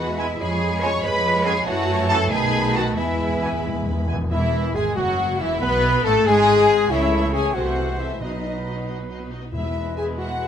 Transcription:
Already playing: E2 G#3 F#4 B4 F#5 B5
0.08 G#3 G#4 E5 G#5
0.17 B2 G#3 B3 E4 B4 E5 G#5 B5
0.29 G#3 G#4 E5 G#5
0.39 F2 F3 G#3 G#4 B4 C#5 G#5 B5
0.50 G#3 F4 C#5 C#6
0.61 F3 G#4 B4 B5
0.71 G#3 F4 C#5 C#6
0.81 C#3 F3 G#3 B3 C#4 G#4 B4 C#5 G#5 B5 C#6
0.93 G#3 F4 C#5 C#6
1.03 F2 F3 G#3 G#4 B4 C#5 B5
1.14 G#3 F4 C#5 C#6
1.24 F3 G#4 B4 B5
1.34 G#3 F4 C#5 C#6
1.44 C#3 F3 G#3 B3 C#4 G#4 B4 G#5 B5
1.54 G#3 F4 C#5 C#6
1.66 F#2 E3 A3 E4 F#4 C#5 F#5 A5
2.09 C#3 E3 A3 F#4 A4 A5
2.30 B1 D#3 A3 D#4 G#4 B4 G#5 A5 B5
2.73 B2 D#3 B3 F#4 F#5 A5
2.96 E2 E3 G#3 E4 B4 E5 G#5 B5
3.05 E2
3.12 E2
3.20 E2
3.28 E2
3.36 E2 B3 E4
3.42 E2 B2 E3 G#5
3.52 E2
3.59 E2
3.67 E2
3.75 E2
3.83 E2
3.90 E2
3.97 E2
4.06 E2 B2 E3 B3 E4 G#5
4.14 E2
4.21 E2
4.30 E1 E2 E3 E4 E5
4.74 G#1 G#2 G#3 G#4 G#5
4.96 F#1 F#2 F#3 F#4 F#5
5.38 E1 E2 E3 E4 E5
5.60 B1 B2 B3 B4 B5
6.03 A1 A2 A3 A4 A5
6.25 G#1 G#2 G#3 G#4 G#5
6.90 C#2 C#3 E3 A3 C#4 E4 A4 C#5 E5
7.02 A3 C#5 E5
7.13 C#4 A4 C#5
7.23 A3 C#5 E5
7.33 C#4 G#4 A4 C#5 G#5
7.44 A3 C#5 E5
7.54 C2 C3 E3 A3 C4 F#4 A4 C5 F#5
7.65 A3 C5 E5
7.76 C4 A4 C5
7.87 G#3 A3 C5 E5
7.98 C4 E4 A4 C5 E5
8.10 A3 C5 E5
8.21 B1 B2 F#3 D#4 F#4 B4 D#5
8.32 B3 D#4 B4
8.43 D#4 F#4 D#5
8.55 B3 D#4 B4
8.66 D#4 F#4 D#5
8.77 B3 D#4 B4
8.88 D#4 F#4 D#5
8.99 B3 D#4 B4
9.09 D#4 F#4 D#5
9.21 B3 D#4 B4
9.31 D#4 F#4 D#5
9.43 B3 D#4 B4
9.53 E1 E2 B2 G#3 E4 G#4 B4 E5
9.63 B3 E4 B4
9.75 G#3 G#4 E5
9.86 B3 E4 B4
9.96 G#3 G#4 E5 G#5
10.08 B3 E4 B4
10.18 G#3 F#4 G#4 E5 F#5
10.29 B3 E4 B4
10.40 G#3 G#4 E5

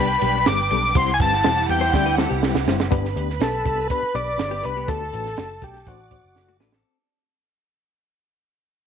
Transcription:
Already playing: C2 G3 B3 D4 G4 B4 G5
0.00 B5
0.22 B1 G3 B3 D4 G4 B4, ride
0.46 G1 G3 B3 D4 G4 B4 D6, snare, ride
0.71 B1 G3 B3 D4 G4 A4, ride
0.95 C2 G3 C4 E4 G4 C5 F#5 C6, kick, ride
1.14 G#5
1.19 G1 G3 C4 E4 G4 B4 A5, kick, ride
1.33 snare
1.43 E1 G3 C4 E4 G4 C5, snare, ride
1.69 E2 G3 C4 E4 G4 B4 G5, ride
1.81 E4 C5
1.93 D2 G3 C4 E4 G4 D5, kick, snare
2.06 D4 B4
2.17 G3 C4 E4 G4 A4 C5, snare
2.29 C2 B3 G4
2.42 G3 C4 E4 G4 B4, snare
2.55 C2, snare
2.67 F#1 G3 C4 E4 G4 C5, snare
2.80 snare
2.91 G1 B3 D4 G4 B4 B5, kick, closed hi-hat
3.05 snare
3.15 D2 B3 D4 G4 B4, closed hi-hat
3.30 snare
3.39 B1 B3 D4 G4 A4 B4, snare, closed hi-hat
3.65 C2 B3 D4 G4 B4, kick, closed hi-hat
3.89 B3 D4 G4 B4, kick, closed hi-hat
4.03 muted picked electric bass stroke
4.14 B1 B3 D4 G4 B4 D5, closed hi-hat
4.37 G1 B3 D4 G4 B4, snare, closed hi-hat
4.51 B3 G4
4.63 C2 B3 D4 G4 B4, closed hi-hat
4.76 B3 G4
4.88 D2 A3 D4 F#4 A4 A5, kick, closed hi-hat
5.13 A1 A3 D4 F#4 B4, closed hi-hat
5.26 snare
5.37 F#1 A3 D4 F#4 A4, snare, closed hi-hat
5.62 B1 A3 D4 F#4 G4 A4, kick, closed hi-hat
5.75 snare
5.86 A1 A3 D4 F#4 C5 D5 D6, kick, closed hi-hat
6.11 A3 D4 F#4 C5, kick, closed hi-hat
6.24 F#1
6.35 F#1 A3 D4 F#4 A4, snare
6.48 A3 F#4
6.60 A1 A3 D4 F#4 A4 B4, snare
6.72 C4 A4, snare

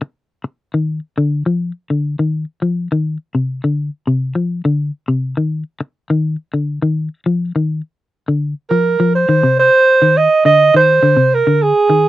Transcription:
0.02 muted clean electric guitar stroke
0.44 muted clean electric guitar stroke
0.74 D#3
1.18 D3
1.46 F3
1.90 D3
2.19 D#3
2.62 F3
2.92 D#3
3.35 C3
3.64 D3
4.07 C3
4.35 F3
4.65 D3
5.08 C3
5.37 D#3
5.81 muted clean electric guitar stroke
6.10 D#3
6.54 D3
6.82 D#3
7.26 F3
7.56 D#3
8.28 D3
8.70 F3 A#4
9.00 F3
9.15 C5
9.29 D#3
9.43 C3
9.59 C5
10.02 D#3
10.17 D#5
10.45 D3 D#5
10.74 D#3 C5
11.03 D3
11.17 C3
11.34 A#4
11.47 D3
11.62 G#4
11.90 D#3

